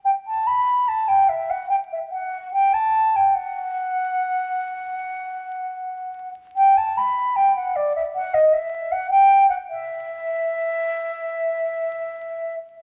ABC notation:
X:1
M:4/4
L:1/16
Q:1/4=75
K:Em
V:1 name="Flute"
g a b2 a g e f g e f2 g a2 g | f12- f3 z | g a b2 g f d e f ^d e2 f g2 f | e12- e3 z |]